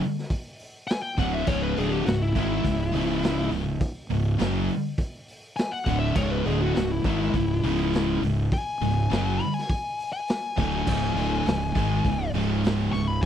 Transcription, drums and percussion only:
0.01 open hi-hat
0.19 snare
0.30 kick, open hi-hat
0.59 open hi-hat
0.88 snare, open hi-hat
1.18 kick, open hi-hat
1.47 kick, crash
1.77 open hi-hat
2.06 snare, open hi-hat
2.35 kick, open hi-hat
2.64 kick, open hi-hat
2.94 open hi-hat
3.22 snare, open hi-hat
3.51 open hi-hat
3.80 kick, open hi-hat
4.10 open hi-hat
4.39 snare, open hi-hat
4.68 open hi-hat
4.98 kick, open hi-hat
5.28 open hi-hat
5.57 snare, open hi-hat
5.86 kick, open hi-hat
6.16 kick, crash
6.46 open hi-hat
6.75 snare, open hi-hat
7.04 kick, open hi-hat
7.22 snare
7.34 kick, open hi-hat
7.63 open hi-hat
7.93 snare, open hi-hat
8.23 open hi-hat
8.52 kick, open hi-hat
8.81 open hi-hat
9.11 snare, open hi-hat
9.41 open hi-hat
9.58 snare
9.69 kick, open hi-hat
9.99 open hi-hat
10.27 snare, open hi-hat
10.58 kick, open hi-hat
10.87 kick, crash
11.16 open hi-hat
11.46 snare, open hi-hat
11.75 kick, open hi-hat
12.05 kick, open hi-hat
12.34 open hi-hat
12.64 snare, open hi-hat
12.94 open hi-hat

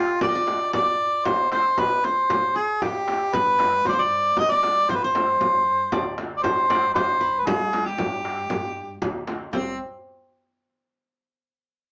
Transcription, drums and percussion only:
0.21 frame drum, darbuka dum
0.47 darbuka tek, frame drum
0.73 frame drum, darbuka dum
1.25 frame drum, darbuka dum
1.52 darbuka tek, frame drum
1.78 darbuka dum, frame drum
2.04 frame drum
2.30 darbuka dum, frame drum
2.82 frame drum, darbuka dum
3.08 darbuka tek, frame drum
3.33 frame drum, darbuka dum
3.59 darbuka tek, frame drum
3.85 darbuka dum, frame drum
4.37 frame drum, darbuka dum
4.63 darbuka tek, frame drum
4.89 darbuka dum, frame drum
5.15 darbuka tek, frame drum
5.41 frame drum, darbuka dum
5.92 frame drum, darbuka dum
6.18 darbuka tek, frame drum
6.44 frame drum, darbuka dum
6.70 darbuka tek, frame drum
6.95 darbuka dum, frame drum
7.47 frame drum, darbuka dum
7.73 darbuka tek, frame drum
7.98 frame drum, darbuka dum
8.25 darbuka tek
8.50 frame drum, darbuka dum
8.76 darbuka ka
9.02 frame drum, darbuka dum
9.27 darbuka tek, frame drum
9.53 darbuka dum, frame drum

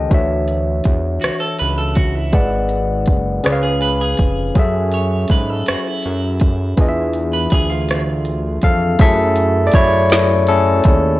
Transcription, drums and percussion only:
0.11 kick, closed hi-hat
0.48 closed hi-hat
0.84 kick, closed hi-hat
1.22 cross-stick, closed hi-hat
1.59 closed hi-hat
1.95 kick, closed hi-hat
2.33 kick, closed hi-hat
2.69 closed hi-hat
3.06 kick, closed hi-hat
3.44 cross-stick, closed hi-hat
3.81 closed hi-hat
4.17 kick, closed hi-hat
4.55 kick, closed hi-hat
4.92 closed hi-hat
5.28 kick, closed hi-hat
5.66 cross-stick, closed hi-hat
6.03 closed hi-hat
6.40 kick, closed hi-hat
6.77 kick, closed hi-hat
7.13 closed hi-hat
7.50 kick, closed hi-hat
7.89 cross-stick, closed hi-hat
8.25 closed hi-hat
8.62 kick, closed hi-hat
8.99 kick, closed hi-hat
9.36 closed hi-hat
9.72 kick, closed hi-hat
10.10 snare, closed hi-hat
10.47 closed hi-hat
10.84 kick, closed hi-hat

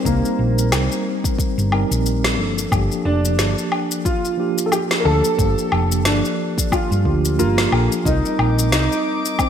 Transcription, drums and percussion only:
0.05 kick, shaker
0.25 shaker
0.59 shaker
0.72 snare, low woodblock, shaker
0.92 shaker
1.24 kick, shaker
1.39 kick, shaker
1.59 shaker
1.72 low woodblock
1.92 shaker
2.06 shaker
2.24 snare, shaker
2.58 shaker
2.72 kick, low woodblock, shaker
2.92 shaker
3.25 shaker
3.39 snare, shaker
3.58 shaker
3.72 low woodblock
3.91 shaker
4.05 kick, shaker
4.25 shaker
4.58 shaker
4.72 low woodblock, shaker
4.91 snare, shaker
5.25 shaker
5.39 kick, shaker
5.58 shaker
5.72 low woodblock
5.92 shaker
6.05 snare, shaker
6.25 shaker
6.58 kick, shaker
6.72 kick, low woodblock, shaker
6.92 shaker
7.05 kick
7.25 shaker
7.39 shaker
7.58 snare, shaker
7.72 low woodblock
7.92 shaker
8.05 kick, shaker
8.25 shaker
8.39 low woodblock
8.59 shaker
8.72 snare, shaker
8.92 shaker
9.25 shaker
9.39 kick, low woodblock, shaker

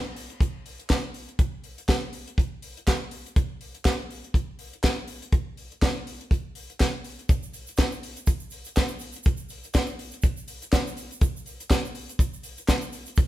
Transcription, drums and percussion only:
0.16 open hi-hat
0.30 closed hi-hat
0.41 kick, closed hi-hat
0.66 open hi-hat
0.80 closed hi-hat
0.89 kick, snare, clap, closed hi-hat
1.14 open hi-hat
1.29 closed hi-hat
1.39 kick, closed hi-hat
1.64 open hi-hat
1.78 closed hi-hat
1.88 kick, snare, clap, closed hi-hat
2.13 open hi-hat
2.28 closed hi-hat
2.38 kick, closed hi-hat
2.62 open hi-hat
2.77 closed hi-hat
2.87 kick, snare, clap, closed hi-hat
3.11 open hi-hat
3.26 closed hi-hat
3.36 kick, closed hi-hat
3.61 open hi-hat
3.75 closed hi-hat
3.85 kick, snare, clap, closed hi-hat
4.10 open hi-hat
4.24 closed hi-hat
4.34 kick, closed hi-hat
4.59 open hi-hat
4.73 closed hi-hat
4.83 kick, snare, clap, closed hi-hat
5.08 open hi-hat
5.22 closed hi-hat
5.32 kick, closed hi-hat
5.57 open hi-hat
5.72 closed hi-hat
5.82 kick, snare, clap, closed hi-hat
6.07 open hi-hat
6.21 closed hi-hat
6.31 kick, closed hi-hat
6.55 open hi-hat
6.70 closed hi-hat
6.79 kick, snare, clap, closed hi-hat
7.04 open hi-hat
7.19 closed hi-hat
7.29 kick, closed hi-hat, shaker
7.43 shaker
7.53 open hi-hat, shaker
7.67 closed hi-hat, shaker
7.77 kick, snare, clap, closed hi-hat, shaker
7.92 shaker
8.03 open hi-hat
8.17 closed hi-hat, shaker
8.26 kick, closed hi-hat, shaker
8.40 shaker
8.50 open hi-hat, shaker
8.65 closed hi-hat, shaker
8.76 kick, snare, clap, closed hi-hat, shaker
8.88 shaker
8.99 open hi-hat, shaker
9.12 closed hi-hat, shaker
9.23 kick, closed hi-hat, shaker
9.37 shaker
9.49 open hi-hat, shaker
9.63 closed hi-hat, shaker
9.74 kick, snare, clap, closed hi-hat, shaker
9.87 shaker
9.99 open hi-hat
10.11 closed hi-hat, shaker
10.22 kick, closed hi-hat, shaker
10.37 shaker
10.48 open hi-hat, shaker
10.62 closed hi-hat, shaker
10.72 kick, snare, clap, closed hi-hat, shaker
10.87 shaker
10.97 open hi-hat, shaker
11.11 closed hi-hat, shaker
11.21 kick, closed hi-hat, shaker
11.36 shaker
11.46 open hi-hat, shaker
11.60 closed hi-hat, shaker
11.70 kick, snare, clap, closed hi-hat, shaker
11.85 shaker
11.95 open hi-hat
12.09 closed hi-hat, shaker
12.19 kick, closed hi-hat, shaker
12.33 shaker
12.43 open hi-hat, shaker
12.58 closed hi-hat, shaker
12.67 kick, snare, clap, closed hi-hat, shaker
12.82 shaker
12.92 open hi-hat, shaker
13.06 closed hi-hat, shaker
13.16 kick, closed hi-hat, shaker

